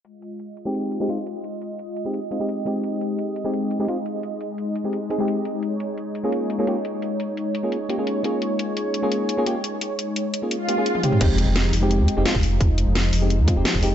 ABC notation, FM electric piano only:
X:1
M:4/4
L:1/16
Q:1/4=172
K:Fm
V:1 name="FM electric piano"
z6 z [A,CEG]4 [A,CEG] [A,CEF] z3 | z6 z [A,CEG]2 z [A,CEF] [A,CEG]3 [A,CEG]2- | [A,CEG]6- [A,CEG] [A,CEG]4 [A,CEG] [A,CEF] z3 | z6 z [A,CEG]2 z [A,CEA] [A,CEG]4- [A,CEG] |
z6 z [B,DFA]4 [B,DFA] [B,DFG] z3 | z6 z [B,DFA]2 z [B,DFG] [B,DFA]3 [B,DFA]2- | [B,DFA]6- [B,DFA] [B,DFA]4 [B,DFA] [B,DFG] z3 | z6 z [B,DFA]2 z [B,DFG] [B,DFA]3 [A,CEG]2 |
[A,CEG]6 z [A,CEG]4 [A,CEG] [A,CEF] z3 | z6 z [A,CEG]2 z [A,CEF] [A,CEG]3 [A,CEG]2 |]